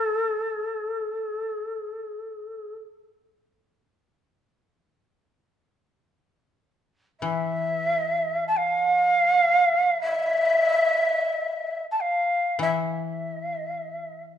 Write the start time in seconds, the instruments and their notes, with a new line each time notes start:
Already playing: koto E3, shakuhachi A4
7.20 koto E3, shakuhachi E5
8.47 shakuhachi A5
8.56 shakuhachi F5
10.01 shakuhachi E5
11.91 shakuhachi A5
12.00 shakuhachi F5
12.59 koto E3, shakuhachi E5